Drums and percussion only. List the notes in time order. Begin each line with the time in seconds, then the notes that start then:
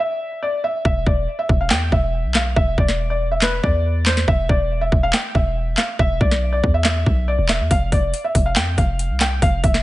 0.85 kick
1.06 kick
1.49 kick
1.71 snare, clap
1.92 kick
2.35 snare, clap
2.56 kick
2.78 kick
2.89 snare
3.42 snare, clap
3.64 kick
4.06 snare, clap
4.17 snare
4.28 kick
4.49 kick
4.92 kick
5.14 snare, clap
5.35 kick
5.78 snare, clap
5.99 kick
6.21 kick
6.31 snare
6.64 kick
6.85 snare, clap
7.06 kick
7.49 snare, clap
7.71 kick, closed hi-hat
7.92 kick, closed hi-hat
8.14 closed hi-hat
8.35 kick, closed hi-hat
8.56 snare, clap, closed hi-hat
8.78 kick, closed hi-hat
8.99 closed hi-hat
9.21 snare, clap, closed hi-hat
9.42 kick, closed hi-hat
9.64 kick, closed hi-hat
9.74 snare